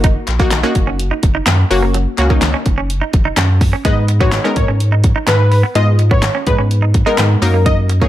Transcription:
Already playing: F#1 A#3 D#4 F#4
0.04 D#4, kick, closed hi-hat
0.27 A#1, muted clean electric guitar stroke, clap, closed hi-hat
0.39 A#3 D#4 F#4, kick
0.51 snare, clap, closed hi-hat
0.63 A#3 C#4 D#4 F#4
0.75 F#1, muted clean electric guitar stroke, kick, closed hi-hat
0.87 C#4
0.99 closed hi-hat
1.11 D#4
1.23 F#1, muted clean electric guitar stroke, kick, closed hi-hat
1.35 D#4
1.46 F#2 A#3, snare, clap, closed hi-hat
1.71 F#1 A#3 C#4 F#4, muted clean electric guitar stroke, open hi-hat
1.83 A#3
1.94 F#3, closed hi-hat
2.18 C#2 A#3 C#4 F#4, muted clean electric guitar stroke, clap, closed hi-hat
2.30 A#3 C#4 D#4, kick
2.42 snare, clap, closed hi-hat
2.54 C#4
2.66 F#1, muted clean electric guitar stroke, kick, closed hi-hat
2.78 C#4
2.90 closed hi-hat
3.02 D#4
3.13 F#1, muted clean electric guitar stroke, kick, closed hi-hat
3.25 D#4
3.37 F#2 C#4, snare, clap, closed hi-hat
3.61 muted clean electric guitar stroke, kick, open hi-hat
3.73 C#4
3.85 G#2 G#3 B3 D#4 B4 D#5, kick, closed hi-hat
4.08 muted clean electric guitar stroke, closed hi-hat
4.21 G#3 B3 D#4 F#4 C#5, kick
4.32 snare, clap, closed hi-hat
4.44 G#3 B3 C#4 D#4 A#4
4.56 G#2 C#5, muted clean electric guitar stroke, kick, closed hi-hat
4.68 G#2 C#4
4.80 closed hi-hat
4.92 D#4
5.04 muted clean electric guitar stroke, kick, closed hi-hat
5.16 D#4
5.27 G#2 B3 B4, snare, clap, closed hi-hat
5.52 muted clean electric guitar stroke, open hi-hat
5.63 B3
5.75 G#2 G#3 B3 D#4 F4 D#5, closed hi-hat
5.99 muted clean electric guitar stroke, closed hi-hat
6.11 B3 C#5, kick
6.22 snare, clap, closed hi-hat
6.35 C#4
6.47 G#2 G#3 B3 D#4 B4, muted clean electric guitar stroke, kick, closed hi-hat
6.59 G#2 C#4
6.71 closed hi-hat
6.82 D#4
6.94 muted clean electric guitar stroke, kick, closed hi-hat
7.06 G#3 B3 D#4 A#4
7.18 G#2 B3, snare, clap, closed hi-hat
7.42 F#2 F#3 A#3 D#4 A#4, muted clean electric guitar stroke, open hi-hat
7.54 A#3
7.66 D#4 D#5, kick, closed hi-hat
7.89 muted clean electric guitar stroke, closed hi-hat
8.01 F#3 A#3 D#4 G#4 C#5, kick

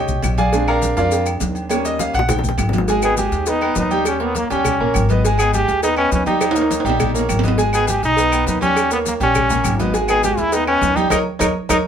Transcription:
Already playing: G4 C#5 D#5 G5
0.08 B1, high conga, low conga, maracas
0.22 A#1, cowbell, high conga, low timbale, low agogo, claves, maracas
0.38 G#4 D5 F5 G#5, cowbell, high conga, low agogo, maracas
0.53 G#3 C4 D4, cowbell, high conga, maracas
0.67 A#4 D5 F5 A#5, high conga, low agogo, claves
0.82 cowbell, high conga, maracas
0.97 F2 F4 A#4 D5 F5, cowbell, high conga, maracas
1.11 cowbell, high conga, low agogo, maracas
1.26 high conga, low agogo, claves, maracas
1.40 D#2, cowbell, high conga, low timbale, maracas
1.55 low agogo, maracas
1.69 G3 A#3 C#4 C#5, cowbell, high conga, low agogo, claves, maracas
1.85 D#5, cowbell, high conga, maracas
1.99 F5, cowbell, high bongo, high conga, low agogo, maracas
2.14 A#1 F#5, cowbell, low agogo, maracas
2.19 high bongo
2.28 G5, cowbell, high bongo, high conga, low conga, high timbale, low agogo, claves, maracas
2.39 low bongo
2.44 high conga, low conga, maracas
2.49 low bongo
2.58 G#1, cowbell, high conga, low timbale, low agogo, claves, maracas
2.69 low bongo, high conga
2.73 cowbell, low timbale, low agogo, maracas
2.78 low bongo
2.88 G#3 G#4 G#5, cowbell, high conga, maracas
3.02 B3 G#4 B4 D#5, high conga, low agogo, claves, maracas
3.17 G#3 G4 G#4 G#5, cowbell, high conga, maracas
3.32 D#2, cowbell, high conga, maracas
3.46 B3 D#4 B4 D#5, cowbell, high conga, low agogo, maracas
3.61 B3 B4 D#5, high conga, low agogo, claves
3.75 D#2 D#4, cowbell, high conga, maracas
3.90 G3 G4 G5, low agogo, maracas
4.05 C#4, cowbell, high conga, low agogo, claves, maracas
4.20 A#3 B3 A#4 C#5, cowbell, high conga
4.35 A#3, cowbell, high conga, low agogo, maracas
4.50 D#2 G3 C#4 G4 G5, cowbell, low agogo, maracas
4.64 cowbell, high conga, low conga, low agogo, claves, maracas
4.80 A#1 A#3 A#4 C#5, high conga
4.94 G#1, cowbell, high conga, low agogo, claves, maracas
5.09 B3 B4 D#5, cowbell, high conga, low agogo, maracas
5.25 G#3 G#4 G#5, cowbell, high conga, maracas
5.38 B3 G#4 B4 D#5, high conga, low agogo, claves, maracas
5.54 G#3 G4 G#4 G#5, cowbell, high conga, maracas
5.68 D#2, cowbell, high conga, maracas
5.83 B3 D#4 B4 D#5, cowbell, high conga, low agogo, maracas
5.96 B3 C#4 B4 D#5, high conga, low agogo, claves
6.12 D#2 C#4, cowbell, high conga, maracas
6.26 G3 D#4 G4 G5, high conga, low agogo, maracas
6.41 cowbell, high conga, high timbale, low agogo, claves, maracas
6.51 high timbale
6.55 A#3 A#4 C#5, cowbell, high conga, maracas
6.61 high timbale
6.71 cowbell, high conga, high timbale, low agogo, maracas
6.80 high timbale
6.85 A#1 G3 G4 G5, cowbell, low agogo, maracas
6.90 low timbale
7.00 cowbell, high conga, low conga, low timbale, low agogo, claves, maracas
7.09 low timbale
7.14 A#3 A#4 C#5, high conga, maracas
7.19 low timbale
7.29 G#1, cowbell, high conga, low timbale, low agogo, claves, maracas
7.39 low timbale
7.43 B3 B4 D#5, cowbell, high conga, low agogo, maracas
7.48 low timbale
7.58 G#3 G#4 G#5, cowbell, maracas
7.73 B3 G#4 B4 D#5, high conga, low agogo, claves, maracas
7.87 G#3 G4 G#4 G#5, cowbell, high conga, maracas
8.02 B1 D#4, cowbell, high conga, maracas
8.17 B3 B4 D#5, cowbell, high conga, low agogo, maracas
8.32 B3 B4 D#5, high conga, low agogo, claves, maracas
8.47 D#2 D#4, cowbell, high conga, maracas
8.61 G3 C#4 G4 G5, high conga, low agogo, maracas
8.76 cowbell, high conga, low agogo, claves, maracas
8.91 A#3 B3 A#4 C#5, cowbell, high conga, maracas
9.06 A#3, cowbell, high conga, low agogo, maracas
9.20 A#1 G3 C#4 G4 G5, cowbell, low agogo, maracas
9.35 cowbell, high conga, low conga, low agogo, claves, maracas
9.50 A#3 A#4 C#5, high conga, low conga, maracas
9.64 G#1, cowbell, high conga, low timbale, low agogo, claves, maracas
9.79 B3 B4 D#5, cowbell, high conga, low agogo, maracas
9.94 G#3 G#4 G#5, cowbell, high conga, maracas
10.08 B3 G#4 B4 D#5, high conga, low agogo, claves, maracas
10.23 G#3 G4 G#4 G#5, cowbell, high conga, maracas
10.37 D#2 E4, cowbell, high conga, maracas
10.52 B3 D#4 B4 D#5, cowbell, high conga, low agogo, maracas
10.67 B3 C#4 B4 D#5, high conga, low agogo, claves
10.81 D#2, cowbell, high conga, low timbale, maracas
10.96 G3 D#4 G4 G5, high conga, low agogo, maracas
11.10 D#2 D#4 A#4 C#5 D#5, cowbell, high conga, high timbale, claves, maracas
11.39 D#2 D#4 A#4 C#5 D#5, cowbell, high conga, high timbale, claves, maracas
11.69 D#2 D#4 A#4 C#5 D#5, cowbell, high conga, high timbale, claves, maracas

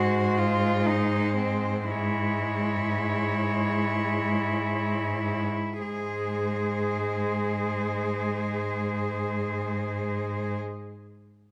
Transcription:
Already playing: G#2 G#3 F#4 C5
0.38 F4
0.86 D#4
1.36 C4
1.91 G#3 E4 C#5
5.80 G#2 G#3 G#4 C5

